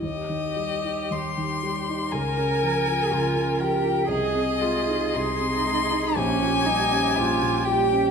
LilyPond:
<<
  \new Staff \with { instrumentName = "Violin" } { \time 4/4 \key c \phrygian \tempo 4 = 60 ees''4 c'''4 aes''4. g''8 | ees''4 c'''4 aes''4. g''8 | }
  \new Staff \with { instrumentName = "Viola" } { \time 4/4 \key c \phrygian g'2 bes'2 | aes'2 g'2 | }
  \new Staff \with { instrumentName = "Cello" } { \time 4/4 \key c \phrygian r2 bes'4 f'8 g'8 | aes'8 f'8 ees'4 des'8 ees'8 f'8 g'8 | }
  \new Staff \with { instrumentName = "Grand piano" } { \clef bass \time 4/4 \key c \phrygian ees,16 ees16 g16 ees'16 ees,16 ees16 g16 ees'16 des,16 des16 f16 f'16 des,16 des16 f16 f'16 | c,16 c16 aes16 ees'16 c,16 c16 aes16 ees'16 bes,,16 bes,16 g16 des'16 bes,,16 bes,16 g16 des'16 | }
>>